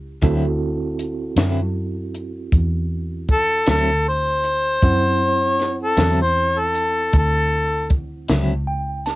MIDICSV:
0, 0, Header, 1, 6, 480
1, 0, Start_track
1, 0, Tempo, 769231
1, 137, Time_signature, 12, 3, 24, 8
1, 5712, End_track
2, 0, Start_track
2, 0, Title_t, "Harmonica"
2, 0, Program_c, 0, 22
2, 2073, Note_on_c, 0, 69, 84
2, 2296, Note_off_c, 0, 69, 0
2, 2310, Note_on_c, 0, 69, 76
2, 2535, Note_off_c, 0, 69, 0
2, 2550, Note_on_c, 0, 72, 85
2, 3596, Note_off_c, 0, 72, 0
2, 3636, Note_on_c, 0, 69, 76
2, 3858, Note_off_c, 0, 69, 0
2, 3879, Note_on_c, 0, 72, 70
2, 4112, Note_on_c, 0, 69, 76
2, 4122, Note_off_c, 0, 72, 0
2, 4453, Note_off_c, 0, 69, 0
2, 4478, Note_on_c, 0, 69, 71
2, 4933, Note_off_c, 0, 69, 0
2, 5712, End_track
3, 0, Start_track
3, 0, Title_t, "Tine electric piano"
3, 0, Program_c, 1, 4
3, 0, Note_on_c, 1, 61, 49
3, 0, Note_on_c, 1, 64, 44
3, 0, Note_on_c, 1, 67, 45
3, 0, Note_on_c, 1, 83, 56
3, 113, Note_off_c, 1, 61, 0
3, 114, Note_off_c, 1, 64, 0
3, 116, Note_off_c, 1, 67, 0
3, 117, Note_off_c, 1, 83, 0
3, 141, Note_on_c, 1, 60, 55
3, 144, Note_on_c, 1, 64, 50
3, 146, Note_on_c, 1, 69, 68
3, 147, Note_on_c, 1, 66, 53
3, 2990, Note_off_c, 1, 60, 0
3, 2992, Note_off_c, 1, 64, 0
3, 2992, Note_off_c, 1, 69, 0
3, 2993, Note_off_c, 1, 66, 0
3, 3013, Note_on_c, 1, 60, 50
3, 3014, Note_on_c, 1, 64, 48
3, 3020, Note_on_c, 1, 72, 54
3, 3021, Note_on_c, 1, 78, 45
3, 5412, Note_on_c, 1, 79, 52
3, 5637, Note_off_c, 1, 79, 0
3, 5653, Note_on_c, 1, 81, 50
3, 5712, Note_off_c, 1, 60, 0
3, 5712, Note_off_c, 1, 64, 0
3, 5712, Note_off_c, 1, 72, 0
3, 5712, Note_off_c, 1, 78, 0
3, 5712, Note_off_c, 1, 81, 0
3, 5712, End_track
4, 0, Start_track
4, 0, Title_t, "Clean electric guitar"
4, 0, Program_c, 2, 27
4, 136, Note_on_c, 2, 50, 63
4, 138, Note_on_c, 2, 54, 60
4, 146, Note_on_c, 2, 60, 64
4, 151, Note_on_c, 2, 64, 65
4, 280, Note_off_c, 2, 50, 0
4, 281, Note_off_c, 2, 54, 0
4, 285, Note_off_c, 2, 60, 0
4, 288, Note_off_c, 2, 64, 0
4, 857, Note_on_c, 2, 64, 72
4, 861, Note_on_c, 2, 60, 66
4, 866, Note_on_c, 2, 54, 67
4, 868, Note_on_c, 2, 50, 58
4, 1000, Note_off_c, 2, 64, 0
4, 1002, Note_off_c, 2, 60, 0
4, 1005, Note_off_c, 2, 50, 0
4, 1005, Note_off_c, 2, 54, 0
4, 2292, Note_on_c, 2, 64, 58
4, 2295, Note_on_c, 2, 60, 55
4, 2297, Note_on_c, 2, 54, 46
4, 2304, Note_on_c, 2, 50, 48
4, 2436, Note_off_c, 2, 64, 0
4, 2438, Note_off_c, 2, 60, 0
4, 2439, Note_off_c, 2, 54, 0
4, 2442, Note_off_c, 2, 50, 0
4, 3723, Note_on_c, 2, 64, 63
4, 3728, Note_on_c, 2, 60, 62
4, 3733, Note_on_c, 2, 54, 51
4, 3738, Note_on_c, 2, 50, 49
4, 3872, Note_off_c, 2, 64, 0
4, 3874, Note_off_c, 2, 60, 0
4, 3877, Note_off_c, 2, 54, 0
4, 3880, Note_off_c, 2, 50, 0
4, 5182, Note_on_c, 2, 64, 67
4, 5186, Note_on_c, 2, 60, 58
4, 5189, Note_on_c, 2, 54, 56
4, 5196, Note_on_c, 2, 50, 53
4, 5323, Note_off_c, 2, 64, 0
4, 5325, Note_off_c, 2, 60, 0
4, 5326, Note_off_c, 2, 54, 0
4, 5330, Note_off_c, 2, 50, 0
4, 5712, End_track
5, 0, Start_track
5, 0, Title_t, "Fingered electric bass"
5, 0, Program_c, 3, 33
5, 0, Note_on_c, 3, 37, 68
5, 114, Note_off_c, 3, 37, 0
5, 139, Note_on_c, 3, 38, 76
5, 835, Note_off_c, 3, 38, 0
5, 849, Note_on_c, 3, 42, 72
5, 1549, Note_off_c, 3, 42, 0
5, 1576, Note_on_c, 3, 40, 71
5, 2273, Note_off_c, 3, 40, 0
5, 2295, Note_on_c, 3, 38, 70
5, 2992, Note_off_c, 3, 38, 0
5, 3012, Note_on_c, 3, 42, 72
5, 3711, Note_off_c, 3, 42, 0
5, 3728, Note_on_c, 3, 40, 77
5, 4429, Note_off_c, 3, 40, 0
5, 4452, Note_on_c, 3, 38, 73
5, 5153, Note_off_c, 3, 38, 0
5, 5175, Note_on_c, 3, 37, 69
5, 5712, Note_off_c, 3, 37, 0
5, 5712, End_track
6, 0, Start_track
6, 0, Title_t, "Drums"
6, 139, Note_on_c, 9, 42, 71
6, 140, Note_on_c, 9, 36, 91
6, 201, Note_off_c, 9, 42, 0
6, 202, Note_off_c, 9, 36, 0
6, 618, Note_on_c, 9, 42, 55
6, 680, Note_off_c, 9, 42, 0
6, 852, Note_on_c, 9, 42, 81
6, 859, Note_on_c, 9, 38, 98
6, 914, Note_off_c, 9, 42, 0
6, 921, Note_off_c, 9, 38, 0
6, 1339, Note_on_c, 9, 42, 48
6, 1401, Note_off_c, 9, 42, 0
6, 1574, Note_on_c, 9, 36, 73
6, 1575, Note_on_c, 9, 42, 71
6, 1637, Note_off_c, 9, 36, 0
6, 1637, Note_off_c, 9, 42, 0
6, 2051, Note_on_c, 9, 42, 47
6, 2052, Note_on_c, 9, 36, 63
6, 2113, Note_off_c, 9, 42, 0
6, 2114, Note_off_c, 9, 36, 0
6, 2287, Note_on_c, 9, 42, 68
6, 2294, Note_on_c, 9, 38, 103
6, 2349, Note_off_c, 9, 42, 0
6, 2356, Note_off_c, 9, 38, 0
6, 2769, Note_on_c, 9, 42, 55
6, 2832, Note_off_c, 9, 42, 0
6, 3009, Note_on_c, 9, 42, 69
6, 3011, Note_on_c, 9, 36, 99
6, 3071, Note_off_c, 9, 42, 0
6, 3073, Note_off_c, 9, 36, 0
6, 3491, Note_on_c, 9, 42, 49
6, 3498, Note_on_c, 9, 38, 30
6, 3554, Note_off_c, 9, 42, 0
6, 3561, Note_off_c, 9, 38, 0
6, 3727, Note_on_c, 9, 42, 76
6, 3734, Note_on_c, 9, 38, 99
6, 3789, Note_off_c, 9, 42, 0
6, 3796, Note_off_c, 9, 38, 0
6, 4210, Note_on_c, 9, 42, 51
6, 4273, Note_off_c, 9, 42, 0
6, 4450, Note_on_c, 9, 42, 77
6, 4452, Note_on_c, 9, 36, 77
6, 4512, Note_off_c, 9, 42, 0
6, 4515, Note_off_c, 9, 36, 0
6, 4930, Note_on_c, 9, 42, 62
6, 4933, Note_on_c, 9, 36, 67
6, 4992, Note_off_c, 9, 42, 0
6, 4995, Note_off_c, 9, 36, 0
6, 5169, Note_on_c, 9, 42, 77
6, 5176, Note_on_c, 9, 38, 88
6, 5232, Note_off_c, 9, 42, 0
6, 5239, Note_off_c, 9, 38, 0
6, 5653, Note_on_c, 9, 42, 54
6, 5660, Note_on_c, 9, 38, 27
6, 5712, Note_off_c, 9, 38, 0
6, 5712, Note_off_c, 9, 42, 0
6, 5712, End_track
0, 0, End_of_file